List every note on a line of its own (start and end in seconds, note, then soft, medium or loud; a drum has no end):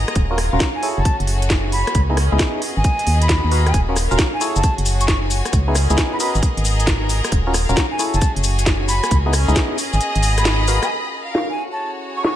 0.00 0.15 B3 medium
0.00 0.15 D#4 medium
0.00 0.81 F#4 medium
0.00 0.44 G#4 medium
0.00 0.15 A#4 medium
0.00 0.44 D#5 medium
0.00 0.44 A#5 medium
0.08 cross-stick medium
0.08 closed hi-hat soft
0.15 0.50 D#1 loud
0.15 1.93 C#4 medium
0.15 0.82 F4 medium
0.15 0.82 A#4 medium
0.15 kick loud
0.15 closed hi-hat medium
0.31 0.38 C#4 medium
0.31 0.38 F4 medium
0.31 0.38 F#4 medium
0.31 0.38 A#4 medium
0.38 cross-stick medium
0.38 open hi-hat medium
0.49 0.83 A#4 medium
0.49 0.83 F5 medium
0.53 0.60 D#1 loud
0.53 0.70 C#4 medium
0.53 0.70 F4 medium
0.53 0.70 F#4 medium
0.53 0.70 A#4 loud
0.60 kick loud
0.60 snare loud
0.60 closed hi-hat medium
0.75 0.89 G#5 medium
0.83 1.02 E4 medium
0.83 1.94 E4 medium
0.83 2.23 F#4 medium
0.83 2.60 G#4 medium
0.83 1.02 G#4 medium
0.83 1.02 A4 medium
0.83 1.94 A4 medium
0.83 1.02 C#5 loud
0.83 open hi-hat medium
0.98 1.04 F#1 loud
0.98 1.16 A5 medium
1.05 kick loud
1.05 closed hi-hat medium
1.20 1.84 F#1 loud
1.20 closed hi-hat soft
1.27 2.23 G#5 medium
1.27 open hi-hat medium
1.35 2.23 C#5 medium
1.42 closed hi-hat medium
1.50 kick loud
1.50 snare loud
1.50 closed hi-hat medium
1.72 2.01 B5 medium
1.72 open hi-hat medium
1.87 cross-stick medium
1.87 closed hi-hat soft
1.95 2.29 C#2 loud
1.95 3.72 B3 medium
1.95 3.07 C#4 medium
1.95 3.72 D#5 medium
1.95 kick loud
1.95 closed hi-hat medium
2.10 2.17 B3 medium
2.10 2.17 D#4 medium
2.10 2.17 E4 medium
2.10 2.17 G#4 loud
2.17 cross-stick medium
2.17 open hi-hat loud
2.27 4.02 G#4 medium
2.27 4.02 D#5 medium
2.32 2.39 C#2 medium
2.32 2.61 B3 medium
2.32 2.61 D#4 medium
2.32 2.61 E4 medium
2.32 2.61 G#4 loud
2.39 kick loud
2.39 snare loud
2.39 closed hi-hat medium
2.62 3.73 A#3 medium
2.62 4.39 F#4 medium
2.62 open hi-hat medium
2.77 2.84 G#1 loud
2.77 3.19 G#5 medium
2.84 kick loud
2.84 closed hi-hat medium
2.99 closed hi-hat soft
3.07 3.41 D#2 medium
3.07 open hi-hat medium
3.15 4.03 B5 medium
3.22 3.52 B5 medium
3.22 closed hi-hat medium
3.29 kick loud
3.29 snare loud
3.29 closed hi-hat medium
3.44 3.73 D#2 loud
3.52 3.71 F#4 medium
3.52 3.71 A#4 medium
3.52 3.71 B4 medium
3.52 3.71 F5 medium
3.52 open hi-hat medium
3.66 3.80 G#5 medium
3.66 cross-stick medium
3.66 closed hi-hat soft
3.74 4.08 D#1 loud
3.74 4.40 A#3 medium
3.74 5.51 C#4 medium
3.74 4.41 F4 medium
3.74 kick loud
3.74 closed hi-hat medium
3.74 shaker soft
3.89 3.96 C#4 medium
3.89 3.96 F4 medium
3.89 3.96 F#4 medium
3.89 3.96 A#4 medium
3.96 cross-stick medium
3.96 open hi-hat loud
3.96 shaker medium
4.07 4.41 A#4 medium
4.07 4.41 F5 medium
4.11 4.18 D#1 medium
4.11 4.28 C#4 medium
4.11 4.28 F4 medium
4.11 4.28 F#4 medium
4.11 4.28 A#4 loud
4.11 shaker soft
4.19 kick loud
4.19 snare loud
4.19 closed hi-hat medium
4.19 shaker soft
4.34 4.47 G#5 medium
4.41 5.52 A3 medium
4.41 4.60 E4 medium
4.41 5.81 F#4 medium
4.41 6.19 F#4 medium
4.41 4.61 G#4 medium
4.41 5.52 G#4 medium
4.41 4.60 A4 medium
4.41 4.61 C#5 loud
4.41 open hi-hat medium
4.41 shaker medium
4.55 4.63 F#1 loud
4.55 4.74 A5 medium
4.55 shaker soft
4.60 5.82 G#5 medium
4.60 kick loud
4.60 closed hi-hat medium
4.60 shaker soft
4.78 5.43 F#1 loud
4.78 closed hi-hat soft
4.86 open hi-hat loud
4.86 shaker medium
4.93 5.81 C#5 medium
5.01 5.06 C#6 medium
5.01 closed hi-hat medium
5.01 shaker soft
5.08 5.18 C#6 medium
5.08 kick loud
5.08 snare loud
5.08 closed hi-hat medium
5.08 shaker soft
5.31 open hi-hat medium
5.31 shaker medium
5.45 cross-stick medium
5.45 closed hi-hat soft
5.45 shaker soft
5.53 5.87 C#2 loud
5.53 7.31 B3 medium
5.53 6.65 C#4 medium
5.53 6.20 G#4 medium
5.53 6.20 D#5 medium
5.53 kick loud
5.53 closed hi-hat medium
5.53 shaker soft
5.68 5.75 B3 medium
5.68 5.75 D#4 medium
5.68 5.75 E4 medium
5.68 5.75 G#4 loud
5.74 7.61 G#4 medium
5.74 cross-stick medium
5.74 open hi-hat loud
5.74 shaker medium
5.86 7.61 D#5 medium
5.90 5.97 C#2 loud
5.90 6.19 B3 loud
5.90 6.19 D#4 medium
5.90 6.19 E4 medium
5.90 6.19 G#4 loud
5.90 shaker soft
5.98 kick loud
5.98 snare loud
5.98 closed hi-hat medium
5.98 shaker soft
6.13 6.18 B5 medium
6.20 7.31 D#4 medium
6.20 6.40 F#4 medium
6.20 7.98 F#4 medium
6.20 6.40 A#4 medium
6.20 7.98 A#4 medium
6.20 6.40 B4 medium
6.20 6.40 D#5 loud
6.20 6.30 B5 medium
6.20 open hi-hat medium
6.20 shaker medium
6.35 6.42 G#1 loud
6.35 shaker soft
6.43 kick loud
6.43 closed hi-hat medium
6.43 shaker soft
6.57 7.22 G#1 loud
6.57 7.60 A#5 medium
6.57 closed hi-hat soft
6.65 open hi-hat loud
6.65 shaker medium
6.80 closed hi-hat medium
6.80 shaker soft
6.87 kick loud
6.87 snare loud
6.87 closed hi-hat medium
6.87 shaker soft
7.10 open hi-hat medium
7.10 shaker medium
7.24 cross-stick medium
7.24 closed hi-hat soft
7.24 shaker soft
7.32 7.66 D#1 loud
7.32 9.09 C#4 medium
7.32 7.99 F4 medium
7.32 kick loud
7.32 closed hi-hat medium
7.32 shaker soft
7.47 7.55 C#4 medium
7.47 7.54 F4 medium
7.47 7.55 F#4 medium
7.47 7.54 A#4 medium
7.54 cross-stick medium
7.54 open hi-hat loud
7.54 shaker medium
7.65 7.99 A#4 medium
7.65 7.99 F5 medium
7.69 7.76 D#1 medium
7.69 7.86 C#4 medium
7.69 7.86 F4 medium
7.69 7.86 F#4 medium
7.69 7.86 A#4 loud
7.69 shaker soft
7.77 kick loud
7.77 snare loud
7.77 closed hi-hat medium
7.77 shaker soft
7.92 8.05 G#5 medium
7.99 9.10 A3 medium
7.99 8.19 E4 medium
7.99 9.76 F#4 medium
7.99 9.40 F#4 medium
7.99 9.10 G#4 medium
7.99 8.19 G#4 medium
7.99 8.19 A4 medium
7.99 8.19 C#5 loud
7.99 open hi-hat medium
7.99 shaker medium
8.14 8.21 F#1 medium
8.14 9.40 G#5 medium
8.14 8.32 A5 medium
8.14 shaker soft
8.21 kick loud
8.21 closed hi-hat medium
8.21 shaker soft
8.30 9.40 C#5 medium
8.36 9.01 F#1 loud
8.36 closed hi-hat soft
8.44 open hi-hat loud
8.44 shaker medium
8.59 closed hi-hat medium
8.59 shaker soft
8.66 kick loud
8.66 snare loud
8.66 closed hi-hat medium
8.66 shaker soft
8.88 9.17 B5 medium
8.88 open hi-hat medium
8.88 shaker medium
9.04 cross-stick medium
9.04 closed hi-hat soft
9.04 shaker soft
9.11 9.46 C#2 loud
9.11 9.77 B3 medium
9.11 10.23 C#4 medium
9.11 9.78 G#4 medium
9.11 10.89 D#5 medium
9.11 kick loud
9.11 closed hi-hat medium
9.11 shaker soft
9.26 9.34 B3 medium
9.26 9.34 D#4 medium
9.26 9.34 E4 medium
9.26 9.34 G#4 loud
9.33 cross-stick medium
9.33 open hi-hat loud
9.33 shaker medium
9.44 11.19 G#4 medium
9.44 11.19 D#5 loud
9.48 9.55 C#2 medium
9.48 9.77 B3 medium
9.48 9.77 D#4 medium
9.48 9.77 E4 medium
9.48 9.77 G#4 loud
9.48 shaker soft
9.56 kick loud
9.56 snare loud
9.56 closed hi-hat medium
9.56 shaker soft
9.78 10.89 A#3 medium
9.78 10.89 B3 medium
9.78 10.89 F#4 medium
9.78 open hi-hat loud
9.78 shaker medium
9.93 10.00 G#1 loud
9.93 10.35 G#5 medium
9.93 shaker soft
10.01 closed hi-hat medium
10.01 shaker soft
10.15 10.80 G#1 loud
10.15 closed hi-hat soft
10.23 open hi-hat loud
10.23 shaker medium
10.30 11.19 B5 medium
10.38 10.68 B5 medium
10.38 cross-stick medium
10.38 closed hi-hat medium
10.38 shaker soft
10.45 snare loud
10.45 closed hi-hat medium
10.45 shaker soft
10.68 10.87 F#4 medium
10.68 10.87 A#4 medium
10.68 10.87 B4 medium
10.68 10.87 F5 medium
10.68 open hi-hat loud
10.68 shaker medium
10.83 10.90 G#5 medium
10.83 cross-stick medium
10.83 closed hi-hat soft
10.83 shaker soft
10.90 12.36 C#4 medium
10.90 11.57 F4 medium
10.90 11.57 F#4 medium
10.90 11.57 A#4 medium
10.90 closed hi-hat medium
11.12 closed hi-hat medium
11.23 11.58 A#4 medium
11.23 11.58 F5 medium
11.35 snare loud
11.35 closed hi-hat medium
11.50 11.64 G#5 medium
11.58 12.36 E4 medium
11.58 12.36 F#4 medium
11.58 12.36 G#4 medium
11.58 12.36 A4 medium
11.69 12.36 C#5 medium
11.69 11.91 A5 medium
11.80 closed hi-hat medium
11.95 closed hi-hat soft
12.09 12.36 G#5 medium
12.17 12.22 C#6 medium
12.17 closed hi-hat medium
12.24 12.34 C#6 medium
12.24 snare loud